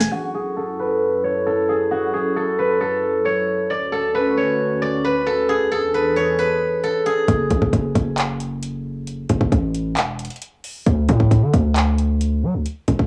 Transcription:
0.00 0.10 E3 medium
0.00 0.10 B3 medium
0.00 0.10 D4 medium
0.00 0.10 G#4 loud
0.00 0.63 G#5 medium
0.00 0.58 B5 medium
0.00 0.26 C#6 medium
0.00 snare loud
0.12 3.66 F#2 medium
0.12 3.66 F#3 medium
0.12 3.66 E4 medium
0.12 1.91 F#4 medium
0.12 3.66 A4 loud
0.35 0.63 G#4 medium
0.57 1.46 A4 medium
0.79 2.58 B4 medium
1.24 3.15 C#5 medium
1.46 1.75 A4 medium
1.69 2.13 G#4 medium
1.91 4.35 F#4 medium
2.13 2.42 G#4 medium
2.36 2.80 A4 medium
2.59 4.14 B4 medium
2.81 3.92 A4 medium
3.25 3.76 C#5 medium
3.70 5.47 D2 medium
3.70 5.47 D3 medium
3.70 5.47 C#4 medium
3.70 5.47 F#4 medium
3.70 4.43 D5 loud
3.92 5.26 A4 medium
4.15 5.04 B4 medium
4.37 4.88 C#5 medium
4.82 6.22 D5 medium
5.04 5.94 B4 medium
5.26 5.55 A4 medium
5.49 7.26 E2 medium
5.49 7.26 E3 medium
5.49 7.26 D4 medium
5.49 5.77 G#4 medium
5.49 7.26 G#4 medium
5.71 6.83 A4 medium
5.94 6.38 B4 medium
6.16 8.07 C#5 medium
6.39 8.44 B4 medium
6.84 7.12 A4 medium
7.06 9.33 G#4 medium
7.28 7.50 F#1 loud
7.28 kick loud
7.28 closed hi-hat medium
7.50 7.61 A1 loud
7.50 kick medium
7.50 closed hi-hat medium
7.62 7.73 F#1 loud
7.62 kick loud
7.73 7.94 F#1 loud
7.73 kick loud
7.73 closed hi-hat medium
7.95 9.26 F#1 loud
7.95 kick loud
7.95 closed hi-hat medium
8.18 clap loud
8.18 closed hi-hat medium
8.40 closed hi-hat medium
8.63 closed hi-hat medium
9.07 closed hi-hat medium
9.30 9.40 F#1 loud
9.30 kick medium
9.30 closed hi-hat medium
9.41 9.52 F#1 loud
9.41 kick loud
9.52 9.98 A1 loud
9.52 kick loud
9.52 closed hi-hat medium
9.75 closed hi-hat medium
9.97 10.29 E1 medium
9.97 clap loud
9.97 closed hi-hat medium
10.19 closed hi-hat medium
10.25 closed hi-hat medium
10.30 closed hi-hat medium
10.36 closed hi-hat soft
10.42 closed hi-hat medium
10.64 open hi-hat medium
10.86 11.08 D2 loud
10.86 kick loud
10.86 closed hi-hat medium
11.09 11.44 A2 loud
11.09 kick medium
11.09 closed hi-hat medium
11.20 kick loud
11.31 kick loud
11.31 closed hi-hat medium
11.42 11.53 D3 loud
11.54 12.45 D2 loud
11.54 kick loud
11.54 closed hi-hat medium
11.76 clap loud
11.76 closed hi-hat medium
11.98 closed hi-hat medium
12.21 closed hi-hat medium
12.43 12.56 F#3 medium
12.54 12.65 D2 loud
12.66 closed hi-hat medium
12.88 13.07 E1 loud
12.88 kick medium
12.88 closed hi-hat medium
12.99 kick loud

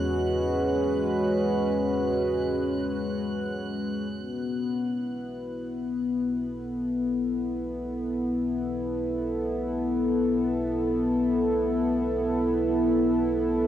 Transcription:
0.00 4.12 E2 medium
0.00 4.13 G#3 medium
0.00 6.09 C#4 medium
0.00 7.39 F#4 medium
0.00 5.40 B4 medium
0.00 4.14 F#6 medium
4.12 13.67 B1 medium
4.12 13.67 B3 medium
4.77 13.67 E4 medium
6.27 13.67 A4 medium

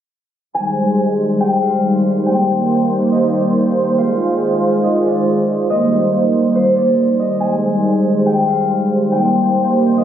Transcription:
0.55 5.65 D#3 medium
0.55 3.94 G3 medium
0.55 2.25 G#3 medium
0.55 5.65 C5 medium
0.55 1.46 G#5 medium
1.40 2.26 G5 medium
1.62 3.28 F5 medium
2.26 3.96 A#3 medium
2.26 3.82 G5 medium
3.12 3.39 D#5 medium
3.33 4.90 D5 medium
3.98 5.68 G#3 medium
3.98 5.68 F4 medium
3.98 5.64 F5 medium
4.84 5.11 D#5 medium
5.05 5.76 D5 medium
5.69 9.09 D#3 medium
5.69 10.04 G3 medium
5.69 7.39 A#3 medium
5.69 9.09 C5 medium
5.69 6.82 D#5 loud
6.55 8.53 C5 medium
6.76 7.25 D5 medium
7.19 8.98 D#5 medium
7.40 9.10 G#3 medium
7.40 8.32 G#5 medium
8.26 9.12 G5 medium
8.48 10.04 F5 medium
9.12 10.04 D#3 medium
9.12 10.04 A#3 medium
9.12 10.04 C5 medium
9.12 10.04 G5 loud
9.97 10.04 D#5 medium

